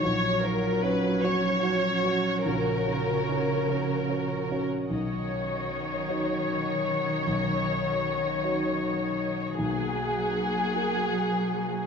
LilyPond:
<<
  \new Staff \with { instrumentName = "Violin section" } { \time 6/8 \key b \major \tempo 4. = 51 cis''8 ais'8 b'8 cis''4. | ais'2~ ais'8. r16 | cis''2.~ | cis''2. |
gis'2. | }
  \new Staff \with { instrumentName = "Grand piano" } { \time 6/8 \key b \major ais,,8 <fis' cis''>8 <cis' fis' cis''>8 <cis' fis' cis''>8 <fis' cis''>8 <cis' fis' cis''>8 | ais,,8 <fis' cis''>8 <cis' fis' cis''>8 <cis' fis' cis''>8 <fis' cis''>8 <cis' fis' cis''>8 | b,,4. <dis' fis' cis''>4. | b,,4. <dis' fis' cis''>4. |
b,,4. <fis' gis' ais'>4. | }
  \new Staff \with { instrumentName = "String section" } { \time 6/8 \key b \major <cis' fis' cis''>2.~ | <cis' fis' cis''>2. | <cis' fis' dis''>2.~ | <cis' fis' dis''>2. |
<ais gis' fis''>2. | }
  \new Staff \with { instrumentName = "Cello" } { \clef bass \time 6/8 \key b \major fis2. | cis2~ cis8. r16 | dis2.~ | dis2. |
fis2. | }
>>